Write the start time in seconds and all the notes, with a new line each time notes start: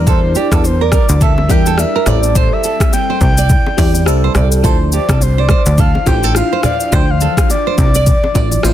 Already playing: E2 G3 D4 E4 A#4
0.07 A4 C5, kick, low conga, shaker
0.35 G4 D5, shaker
0.52 E2 A4, kick, cross-stick, shaker
0.64 C5, high bongo, shaker
0.81 A#4 D5
0.92 A#4, kick, cross-stick, shaker
1.09 D2, shaker
1.21 A4 E5, kick, low conga, shaker
1.38 low bongo
1.48 E2 G3 D4 E4 G4 A#4 G5, kick, low bongo, shaker
1.66 A4, high bongo, shaker
1.77 G3 D4 E4 A#4 E5, cross-stick, high bongo, shaker
1.96 A#4
2.06 A1 G3 C4 E4 A4 D5, cross-stick, high bongo, low conga, shaker
2.23 shaker
2.35 C5, kick, low conga, shaker
2.53 E5
2.64 A4, shaker
2.80 kick, cross-stick, shaker
2.93 G5, high bongo, shaker
3.10 C5
3.21 C2 G5, kick, shaker
3.38 D5, shaker
3.49 kick, low conga, shaker
3.66 low bongo
3.77 E2 G3 C4 E4 G4 D5, kick, open hi-hat, low bongo, shaker
3.94 high bongo, shaker
4.05 C2 G3 C4 E4 A4, cross-stick, high bongo, shaker
4.24 C5
4.35 C2 D5, cross-stick, high bongo, low conga, shaker
4.52 shaker
4.63 D2 F3 D4 E4 A4 C5, kick, low conga, shaker
4.92 G4 D5, shaker
5.09 C2 A4, kick, cross-stick, shaker
5.21 C5, high bongo, shaker
5.38 C5 D5
5.49 C5, kick, cross-stick, shaker
5.66 D2, shaker
5.78 A4 F5, kick, low conga, shaker
5.95 low bongo
6.06 A1 F3 D4 E4 G4 C5 G5, kick, low bongo, shaker
6.23 A4, high bongo, shaker
6.34 F3 D4 E4 C5 F5, cross-stick, high bongo, shaker
6.53 C5
6.63 D5 F5, cross-stick, high bongo, low conga, shaker
6.80 shaker
6.91 D2 E3 F3 D4 C5 G5, kick, low conga, shaker
7.10 F5
7.21 A4, shaker
7.37 kick, cross-stick, shaker
7.50 D5, high bongo, shaker
7.67 C5
7.78 C2 D5, kick, shaker
7.95 D5, shaker
8.06 kick, low conga, shaker
8.24 low bongo
8.34 A1 F3 D4 E4 D5, kick, low bongo, shaker
8.51 high bongo, shaker
8.63 A1 F3 D4 E4 C5, cross-stick, high bongo, shaker